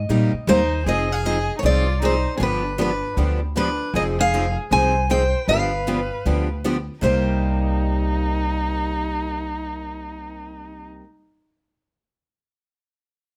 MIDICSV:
0, 0, Header, 1, 6, 480
1, 0, Start_track
1, 0, Key_signature, -3, "minor"
1, 0, Tempo, 385109
1, 1071, Time_signature, 4, 2, 24, 8
1, 16653, End_track
2, 0, Start_track
2, 0, Title_t, "Steel-string acoustic guitar"
2, 0, Program_c, 0, 25
2, 0, Note_on_c, 0, 75, 102
2, 613, Note_on_c, 0, 72, 98
2, 858, Note_off_c, 0, 75, 0
2, 1049, Note_off_c, 0, 72, 0
2, 1103, Note_on_c, 0, 75, 89
2, 1399, Note_off_c, 0, 75, 0
2, 1399, Note_on_c, 0, 77, 92
2, 1571, Note_off_c, 0, 77, 0
2, 1571, Note_on_c, 0, 75, 86
2, 1975, Note_off_c, 0, 75, 0
2, 1980, Note_on_c, 0, 73, 72
2, 2037, Note_off_c, 0, 73, 0
2, 2064, Note_on_c, 0, 74, 91
2, 2542, Note_off_c, 0, 74, 0
2, 2554, Note_on_c, 0, 72, 87
2, 2922, Note_off_c, 0, 72, 0
2, 2960, Note_on_c, 0, 68, 62
2, 3007, Note_off_c, 0, 68, 0
2, 3026, Note_on_c, 0, 71, 87
2, 3492, Note_off_c, 0, 71, 0
2, 3507, Note_on_c, 0, 71, 70
2, 3937, Note_off_c, 0, 71, 0
2, 4453, Note_on_c, 0, 71, 81
2, 4890, Note_off_c, 0, 71, 0
2, 4938, Note_on_c, 0, 75, 86
2, 5017, Note_off_c, 0, 75, 0
2, 5241, Note_on_c, 0, 77, 100
2, 5677, Note_off_c, 0, 77, 0
2, 5888, Note_on_c, 0, 80, 104
2, 6328, Note_off_c, 0, 80, 0
2, 6367, Note_on_c, 0, 79, 104
2, 6807, Note_off_c, 0, 79, 0
2, 6840, Note_on_c, 0, 77, 87
2, 8227, Note_off_c, 0, 77, 0
2, 8767, Note_on_c, 0, 72, 70
2, 13718, Note_off_c, 0, 72, 0
2, 16653, End_track
3, 0, Start_track
3, 0, Title_t, "Violin"
3, 0, Program_c, 1, 40
3, 612, Note_on_c, 1, 63, 85
3, 1049, Note_off_c, 1, 63, 0
3, 1073, Note_on_c, 1, 68, 80
3, 1381, Note_off_c, 1, 68, 0
3, 1381, Note_on_c, 1, 68, 85
3, 1557, Note_off_c, 1, 68, 0
3, 1557, Note_on_c, 1, 68, 77
3, 1950, Note_off_c, 1, 68, 0
3, 1957, Note_on_c, 1, 63, 54
3, 2021, Note_off_c, 1, 63, 0
3, 2033, Note_on_c, 1, 65, 83
3, 2479, Note_off_c, 1, 65, 0
3, 2510, Note_on_c, 1, 63, 73
3, 2898, Note_off_c, 1, 63, 0
3, 2939, Note_on_c, 1, 60, 52
3, 2993, Note_off_c, 1, 60, 0
3, 3011, Note_on_c, 1, 62, 71
3, 3448, Note_off_c, 1, 62, 0
3, 3491, Note_on_c, 1, 62, 56
3, 3929, Note_off_c, 1, 62, 0
3, 4440, Note_on_c, 1, 62, 69
3, 4883, Note_off_c, 1, 62, 0
3, 4913, Note_on_c, 1, 68, 75
3, 5051, Note_off_c, 1, 68, 0
3, 5217, Note_on_c, 1, 68, 86
3, 5664, Note_off_c, 1, 68, 0
3, 5873, Note_on_c, 1, 72, 87
3, 6319, Note_off_c, 1, 72, 0
3, 6346, Note_on_c, 1, 72, 83
3, 6796, Note_off_c, 1, 72, 0
3, 6827, Note_on_c, 1, 71, 82
3, 8221, Note_off_c, 1, 71, 0
3, 8763, Note_on_c, 1, 63, 76
3, 13547, Note_off_c, 1, 63, 0
3, 16653, End_track
4, 0, Start_track
4, 0, Title_t, "Steel-string acoustic guitar"
4, 0, Program_c, 2, 25
4, 117, Note_on_c, 2, 48, 69
4, 122, Note_on_c, 2, 55, 76
4, 124, Note_on_c, 2, 63, 84
4, 126, Note_on_c, 2, 58, 67
4, 129, Note_on_c, 2, 67, 78
4, 385, Note_off_c, 2, 48, 0
4, 387, Note_off_c, 2, 55, 0
4, 388, Note_off_c, 2, 63, 0
4, 389, Note_off_c, 2, 58, 0
4, 391, Note_off_c, 2, 67, 0
4, 603, Note_on_c, 2, 55, 93
4, 604, Note_on_c, 2, 48, 83
4, 606, Note_on_c, 2, 58, 98
4, 612, Note_on_c, 2, 63, 95
4, 613, Note_on_c, 2, 67, 107
4, 740, Note_off_c, 2, 55, 0
4, 741, Note_off_c, 2, 48, 0
4, 742, Note_off_c, 2, 58, 0
4, 745, Note_off_c, 2, 63, 0
4, 745, Note_off_c, 2, 67, 0
4, 1082, Note_on_c, 2, 53, 59
4, 1087, Note_on_c, 2, 60, 66
4, 1095, Note_on_c, 2, 63, 61
4, 1101, Note_on_c, 2, 68, 72
4, 1347, Note_off_c, 2, 53, 0
4, 1349, Note_off_c, 2, 60, 0
4, 1353, Note_off_c, 2, 63, 0
4, 1356, Note_off_c, 2, 68, 0
4, 1565, Note_on_c, 2, 60, 71
4, 1567, Note_on_c, 2, 53, 72
4, 1572, Note_on_c, 2, 63, 75
4, 1576, Note_on_c, 2, 68, 83
4, 1701, Note_off_c, 2, 60, 0
4, 1702, Note_off_c, 2, 53, 0
4, 1704, Note_off_c, 2, 63, 0
4, 1706, Note_off_c, 2, 68, 0
4, 2027, Note_on_c, 2, 53, 62
4, 2035, Note_on_c, 2, 60, 64
4, 2041, Note_on_c, 2, 63, 59
4, 2043, Note_on_c, 2, 68, 70
4, 2299, Note_off_c, 2, 53, 0
4, 2304, Note_off_c, 2, 60, 0
4, 2306, Note_off_c, 2, 63, 0
4, 2308, Note_off_c, 2, 68, 0
4, 2515, Note_on_c, 2, 53, 83
4, 2521, Note_on_c, 2, 60, 86
4, 2524, Note_on_c, 2, 63, 86
4, 2529, Note_on_c, 2, 68, 92
4, 2656, Note_off_c, 2, 53, 0
4, 2659, Note_off_c, 2, 60, 0
4, 2661, Note_off_c, 2, 63, 0
4, 2663, Note_off_c, 2, 68, 0
4, 2988, Note_on_c, 2, 50, 72
4, 2992, Note_on_c, 2, 53, 67
4, 2998, Note_on_c, 2, 59, 67
4, 3001, Note_on_c, 2, 62, 67
4, 3002, Note_on_c, 2, 67, 72
4, 3260, Note_off_c, 2, 50, 0
4, 3262, Note_off_c, 2, 53, 0
4, 3265, Note_off_c, 2, 59, 0
4, 3267, Note_off_c, 2, 62, 0
4, 3267, Note_off_c, 2, 67, 0
4, 3466, Note_on_c, 2, 50, 76
4, 3468, Note_on_c, 2, 53, 84
4, 3469, Note_on_c, 2, 59, 83
4, 3476, Note_on_c, 2, 67, 82
4, 3478, Note_on_c, 2, 62, 89
4, 3612, Note_off_c, 2, 50, 0
4, 3613, Note_off_c, 2, 53, 0
4, 3614, Note_off_c, 2, 59, 0
4, 3617, Note_off_c, 2, 67, 0
4, 3618, Note_off_c, 2, 62, 0
4, 3956, Note_on_c, 2, 53, 67
4, 3957, Note_on_c, 2, 50, 63
4, 3962, Note_on_c, 2, 59, 62
4, 3964, Note_on_c, 2, 62, 70
4, 3966, Note_on_c, 2, 67, 67
4, 4224, Note_off_c, 2, 53, 0
4, 4225, Note_off_c, 2, 50, 0
4, 4228, Note_off_c, 2, 59, 0
4, 4229, Note_off_c, 2, 62, 0
4, 4230, Note_off_c, 2, 67, 0
4, 4446, Note_on_c, 2, 50, 78
4, 4451, Note_on_c, 2, 53, 91
4, 4451, Note_on_c, 2, 59, 80
4, 4458, Note_on_c, 2, 62, 91
4, 4459, Note_on_c, 2, 67, 90
4, 4582, Note_off_c, 2, 50, 0
4, 4585, Note_off_c, 2, 53, 0
4, 4585, Note_off_c, 2, 59, 0
4, 4588, Note_off_c, 2, 62, 0
4, 4589, Note_off_c, 2, 67, 0
4, 4926, Note_on_c, 2, 53, 61
4, 4934, Note_on_c, 2, 60, 68
4, 4937, Note_on_c, 2, 63, 68
4, 4938, Note_on_c, 2, 68, 73
4, 5190, Note_off_c, 2, 53, 0
4, 5194, Note_off_c, 2, 60, 0
4, 5195, Note_off_c, 2, 63, 0
4, 5196, Note_off_c, 2, 68, 0
4, 5407, Note_on_c, 2, 53, 74
4, 5408, Note_on_c, 2, 60, 80
4, 5411, Note_on_c, 2, 63, 76
4, 5414, Note_on_c, 2, 68, 90
4, 5543, Note_off_c, 2, 53, 0
4, 5543, Note_off_c, 2, 60, 0
4, 5545, Note_off_c, 2, 63, 0
4, 5546, Note_off_c, 2, 68, 0
4, 5876, Note_on_c, 2, 53, 62
4, 5881, Note_on_c, 2, 60, 70
4, 5886, Note_on_c, 2, 63, 66
4, 5887, Note_on_c, 2, 68, 67
4, 6145, Note_off_c, 2, 53, 0
4, 6147, Note_off_c, 2, 60, 0
4, 6150, Note_off_c, 2, 63, 0
4, 6150, Note_off_c, 2, 68, 0
4, 6355, Note_on_c, 2, 53, 76
4, 6356, Note_on_c, 2, 60, 86
4, 6362, Note_on_c, 2, 63, 86
4, 6367, Note_on_c, 2, 68, 88
4, 6497, Note_off_c, 2, 53, 0
4, 6498, Note_off_c, 2, 60, 0
4, 6501, Note_off_c, 2, 63, 0
4, 6503, Note_off_c, 2, 68, 0
4, 6846, Note_on_c, 2, 50, 59
4, 6847, Note_on_c, 2, 59, 60
4, 6851, Note_on_c, 2, 53, 64
4, 6853, Note_on_c, 2, 62, 73
4, 6861, Note_on_c, 2, 67, 72
4, 7110, Note_off_c, 2, 50, 0
4, 7110, Note_off_c, 2, 59, 0
4, 7112, Note_off_c, 2, 53, 0
4, 7113, Note_off_c, 2, 62, 0
4, 7117, Note_off_c, 2, 67, 0
4, 7318, Note_on_c, 2, 50, 73
4, 7324, Note_on_c, 2, 59, 87
4, 7325, Note_on_c, 2, 53, 80
4, 7326, Note_on_c, 2, 62, 82
4, 7334, Note_on_c, 2, 67, 78
4, 7459, Note_off_c, 2, 50, 0
4, 7462, Note_off_c, 2, 53, 0
4, 7462, Note_off_c, 2, 59, 0
4, 7463, Note_off_c, 2, 62, 0
4, 7467, Note_off_c, 2, 67, 0
4, 7798, Note_on_c, 2, 50, 56
4, 7806, Note_on_c, 2, 53, 63
4, 7807, Note_on_c, 2, 59, 66
4, 7808, Note_on_c, 2, 62, 64
4, 7813, Note_on_c, 2, 67, 62
4, 8066, Note_off_c, 2, 50, 0
4, 8070, Note_off_c, 2, 53, 0
4, 8071, Note_off_c, 2, 59, 0
4, 8071, Note_off_c, 2, 62, 0
4, 8074, Note_off_c, 2, 67, 0
4, 8280, Note_on_c, 2, 50, 82
4, 8282, Note_on_c, 2, 53, 84
4, 8287, Note_on_c, 2, 59, 82
4, 8292, Note_on_c, 2, 67, 94
4, 8294, Note_on_c, 2, 62, 94
4, 8420, Note_off_c, 2, 50, 0
4, 8421, Note_off_c, 2, 53, 0
4, 8424, Note_off_c, 2, 59, 0
4, 8426, Note_off_c, 2, 67, 0
4, 8427, Note_off_c, 2, 62, 0
4, 8740, Note_on_c, 2, 48, 74
4, 8751, Note_on_c, 2, 55, 76
4, 8759, Note_on_c, 2, 58, 89
4, 8767, Note_on_c, 2, 63, 76
4, 8778, Note_on_c, 2, 67, 86
4, 13740, Note_off_c, 2, 48, 0
4, 13751, Note_off_c, 2, 55, 0
4, 13759, Note_off_c, 2, 58, 0
4, 13767, Note_off_c, 2, 63, 0
4, 13779, Note_off_c, 2, 67, 0
4, 16653, End_track
5, 0, Start_track
5, 0, Title_t, "Upright bass"
5, 0, Program_c, 3, 32
5, 112, Note_on_c, 3, 46, 84
5, 396, Note_off_c, 3, 46, 0
5, 589, Note_on_c, 3, 39, 97
5, 1056, Note_off_c, 3, 39, 0
5, 1075, Note_on_c, 3, 29, 82
5, 1841, Note_off_c, 3, 29, 0
5, 2029, Note_on_c, 3, 36, 83
5, 2798, Note_off_c, 3, 36, 0
5, 2989, Note_on_c, 3, 31, 84
5, 3758, Note_off_c, 3, 31, 0
5, 3947, Note_on_c, 3, 38, 76
5, 4717, Note_off_c, 3, 38, 0
5, 4906, Note_on_c, 3, 29, 86
5, 5677, Note_off_c, 3, 29, 0
5, 5870, Note_on_c, 3, 36, 84
5, 6640, Note_off_c, 3, 36, 0
5, 6826, Note_on_c, 3, 31, 82
5, 7597, Note_off_c, 3, 31, 0
5, 7796, Note_on_c, 3, 38, 76
5, 8563, Note_off_c, 3, 38, 0
5, 8749, Note_on_c, 3, 36, 85
5, 13700, Note_off_c, 3, 36, 0
5, 16653, End_track
6, 0, Start_track
6, 0, Title_t, "Muted upright bass strokes"
6, 414, Note_on_c, 9, 29, 37
6, 539, Note_off_c, 9, 29, 0
6, 16653, End_track
0, 0, End_of_file